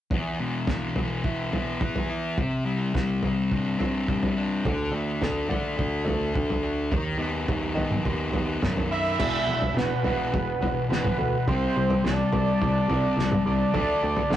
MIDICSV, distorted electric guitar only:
0, 0, Header, 1, 2, 480
1, 0, Start_track
1, 0, Key_signature, 1, "minor"
1, 0, Tempo, 568182
1, 83, Time_signature, 4, 2, 24, 8
1, 12136, End_track
2, 0, Start_track
2, 0, Title_t, "Distorted electric guitar"
2, 0, Program_c, 0, 30
2, 94, Note_on_c, 0, 40, 57
2, 335, Note_on_c, 0, 47, 57
2, 574, Note_on_c, 0, 52, 57
2, 809, Note_on_c, 0, 59, 56
2, 1049, Note_on_c, 0, 64, 59
2, 1274, Note_off_c, 0, 59, 0
2, 1284, Note_on_c, 0, 59, 54
2, 1290, Note_off_c, 0, 40, 0
2, 1520, Note_off_c, 0, 52, 0
2, 1531, Note_off_c, 0, 47, 0
2, 1531, Note_on_c, 0, 52, 65
2, 1758, Note_off_c, 0, 64, 0
2, 1768, Note_on_c, 0, 64, 52
2, 2006, Note_off_c, 0, 59, 0
2, 2007, Note_off_c, 0, 64, 0
2, 2009, Note_off_c, 0, 52, 0
2, 2011, Note_on_c, 0, 48, 66
2, 2238, Note_on_c, 0, 55, 57
2, 2473, Note_off_c, 0, 55, 0
2, 2484, Note_on_c, 0, 55, 55
2, 2739, Note_on_c, 0, 60, 55
2, 2980, Note_on_c, 0, 62, 57
2, 3187, Note_off_c, 0, 60, 0
2, 3197, Note_on_c, 0, 60, 51
2, 3210, Note_off_c, 0, 48, 0
2, 3441, Note_off_c, 0, 55, 0
2, 3452, Note_on_c, 0, 55, 58
2, 3687, Note_off_c, 0, 62, 0
2, 3697, Note_on_c, 0, 62, 58
2, 3923, Note_off_c, 0, 60, 0
2, 3930, Note_off_c, 0, 55, 0
2, 3933, Note_off_c, 0, 62, 0
2, 3943, Note_on_c, 0, 50, 66
2, 4176, Note_on_c, 0, 57, 64
2, 4401, Note_off_c, 0, 50, 0
2, 4411, Note_on_c, 0, 50, 61
2, 4627, Note_off_c, 0, 57, 0
2, 4638, Note_on_c, 0, 57, 53
2, 4873, Note_on_c, 0, 62, 58
2, 5109, Note_off_c, 0, 57, 0
2, 5119, Note_on_c, 0, 57, 58
2, 5349, Note_off_c, 0, 50, 0
2, 5359, Note_on_c, 0, 50, 60
2, 5594, Note_off_c, 0, 62, 0
2, 5605, Note_on_c, 0, 62, 59
2, 5836, Note_off_c, 0, 50, 0
2, 5840, Note_on_c, 0, 51, 62
2, 5844, Note_off_c, 0, 57, 0
2, 5847, Note_off_c, 0, 62, 0
2, 6070, Note_on_c, 0, 59, 61
2, 6307, Note_off_c, 0, 51, 0
2, 6317, Note_on_c, 0, 51, 60
2, 6546, Note_off_c, 0, 59, 0
2, 6556, Note_on_c, 0, 59, 60
2, 6805, Note_on_c, 0, 63, 54
2, 7040, Note_off_c, 0, 59, 0
2, 7051, Note_on_c, 0, 59, 57
2, 7272, Note_off_c, 0, 51, 0
2, 7283, Note_on_c, 0, 51, 66
2, 7517, Note_off_c, 0, 63, 0
2, 7527, Note_on_c, 0, 63, 59
2, 7762, Note_on_c, 0, 40, 92
2, 7766, Note_off_c, 0, 51, 0
2, 7768, Note_off_c, 0, 63, 0
2, 7768, Note_on_c, 0, 47, 84
2, 7769, Note_on_c, 0, 52, 94
2, 7770, Note_off_c, 0, 59, 0
2, 7988, Note_off_c, 0, 40, 0
2, 7994, Note_off_c, 0, 47, 0
2, 7995, Note_off_c, 0, 52, 0
2, 7998, Note_on_c, 0, 40, 60
2, 8004, Note_on_c, 0, 47, 65
2, 8220, Note_off_c, 0, 40, 0
2, 8223, Note_off_c, 0, 47, 0
2, 8255, Note_on_c, 0, 40, 67
2, 8261, Note_on_c, 0, 47, 75
2, 8468, Note_off_c, 0, 40, 0
2, 8471, Note_off_c, 0, 47, 0
2, 8488, Note_on_c, 0, 40, 76
2, 8490, Note_on_c, 0, 47, 74
2, 8490, Note_on_c, 0, 52, 72
2, 8714, Note_off_c, 0, 40, 0
2, 8715, Note_off_c, 0, 47, 0
2, 8715, Note_off_c, 0, 52, 0
2, 8724, Note_on_c, 0, 40, 59
2, 8727, Note_on_c, 0, 47, 61
2, 8942, Note_off_c, 0, 40, 0
2, 8944, Note_off_c, 0, 47, 0
2, 8970, Note_on_c, 0, 40, 61
2, 8976, Note_on_c, 0, 47, 70
2, 9185, Note_off_c, 0, 40, 0
2, 9188, Note_off_c, 0, 47, 0
2, 9213, Note_on_c, 0, 47, 78
2, 9215, Note_on_c, 0, 40, 78
2, 9221, Note_on_c, 0, 52, 94
2, 9436, Note_off_c, 0, 47, 0
2, 9437, Note_off_c, 0, 40, 0
2, 9440, Note_off_c, 0, 52, 0
2, 9451, Note_on_c, 0, 40, 59
2, 9453, Note_on_c, 0, 47, 68
2, 9665, Note_off_c, 0, 40, 0
2, 9667, Note_off_c, 0, 47, 0
2, 9704, Note_on_c, 0, 48, 79
2, 9706, Note_on_c, 0, 55, 87
2, 9714, Note_on_c, 0, 60, 86
2, 9922, Note_off_c, 0, 48, 0
2, 9922, Note_off_c, 0, 55, 0
2, 9926, Note_off_c, 0, 60, 0
2, 9940, Note_on_c, 0, 48, 64
2, 9944, Note_on_c, 0, 55, 70
2, 10150, Note_off_c, 0, 48, 0
2, 10152, Note_off_c, 0, 55, 0
2, 10172, Note_on_c, 0, 48, 75
2, 10173, Note_on_c, 0, 55, 73
2, 10386, Note_off_c, 0, 48, 0
2, 10386, Note_off_c, 0, 55, 0
2, 10418, Note_on_c, 0, 55, 59
2, 10419, Note_on_c, 0, 48, 55
2, 10629, Note_off_c, 0, 48, 0
2, 10629, Note_off_c, 0, 55, 0
2, 10658, Note_on_c, 0, 48, 64
2, 10663, Note_on_c, 0, 55, 63
2, 10869, Note_off_c, 0, 48, 0
2, 10871, Note_off_c, 0, 55, 0
2, 10894, Note_on_c, 0, 48, 85
2, 10894, Note_on_c, 0, 55, 83
2, 10904, Note_on_c, 0, 60, 91
2, 11116, Note_off_c, 0, 48, 0
2, 11116, Note_off_c, 0, 55, 0
2, 11121, Note_off_c, 0, 60, 0
2, 11137, Note_on_c, 0, 48, 64
2, 11138, Note_on_c, 0, 55, 72
2, 11348, Note_off_c, 0, 48, 0
2, 11349, Note_off_c, 0, 55, 0
2, 11378, Note_on_c, 0, 48, 62
2, 11379, Note_on_c, 0, 55, 68
2, 11589, Note_off_c, 0, 48, 0
2, 11589, Note_off_c, 0, 55, 0
2, 11608, Note_on_c, 0, 50, 85
2, 11615, Note_on_c, 0, 62, 99
2, 11617, Note_on_c, 0, 57, 88
2, 11833, Note_off_c, 0, 50, 0
2, 11837, Note_off_c, 0, 62, 0
2, 11838, Note_off_c, 0, 57, 0
2, 11854, Note_on_c, 0, 50, 72
2, 11860, Note_on_c, 0, 57, 71
2, 12067, Note_off_c, 0, 50, 0
2, 12069, Note_off_c, 0, 57, 0
2, 12085, Note_on_c, 0, 50, 62
2, 12088, Note_on_c, 0, 57, 81
2, 12136, Note_off_c, 0, 50, 0
2, 12136, Note_off_c, 0, 57, 0
2, 12136, End_track
0, 0, End_of_file